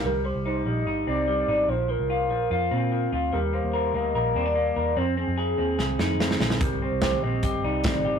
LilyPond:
<<
  \new Staff \with { instrumentName = "Soft synth lead" } { \time 4/4 \key c \minor \tempo 4 = 146 bes'8 c''8 c''8 ees''4 d''4. | c''8 bes'2. r8 | bes'8 c''8 c''8 ees''4 d''4. | c''8 aes'2. r8 |
bes'8 c''8 c''8 ees''4 d''4. | }
  \new Staff \with { instrumentName = "Clean electric guitar" } { \time 4/4 \key c \minor g8 g8 ees'8 g8 ees'8 c'8 g8 ees'8 | f8 f8 f'8 f8 f'8 c'8 f8 f'8 | g8 bes8 bes'8 bes8 bes'8 c'16 d'16 bes8 bes'8 | c'8 c'8 aes'8 c'8 aes'8 ees'8 c'8 aes'8 |
g8 c'8 g'8 c'8 g'8 ees'8 c'8 g'8 | }
  \new Staff \with { instrumentName = "Picked electric bass" } { \clef bass \time 4/4 \key c \minor c,8. c,8. bes,,8 g,,8 c,4 aes,,8 | bes,,8. c,8. bes,,8 f,8 bes,4 d,8 | ees,8. ees,8. d,8 bes,,8 ees,4 ees,8 | f,8. f,8. ees,8 c,8 f,4 bes,,8 |
c,8. c,8. bes,,8 g,,8 c,4 aes,,8 | }
  \new DrumStaff \with { instrumentName = "Drums" } \drummode { \time 4/4 r4 r4 r4 r4 | r4 r4 r4 r4 | r4 r4 r4 r4 | r4 r4 sn8 sn8 sn16 sn16 sn16 sn16 |
<hh bd>4 <hh bd sn>4 <hh bd>4 <hh bd sn>4 | }
>>